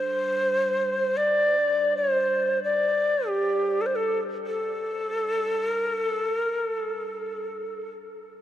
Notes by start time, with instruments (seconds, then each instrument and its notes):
Already playing: singing bowl G3 D4, native american-style wooden flute C5
1.17 native american-style wooden flute D5
1.97 native american-style wooden flute C5
2.64 native american-style wooden flute D5
3.27 native american-style wooden flute G4
3.81 native american-style wooden flute A4
3.86 native american-style wooden flute C5
3.95 native american-style wooden flute A4
4.47 native american-style wooden flute A4
5.68 native american-style wooden flute A#4
6.01 native american-style wooden flute A4
6.37 native american-style wooden flute A#4
6.70 native american-style wooden flute A4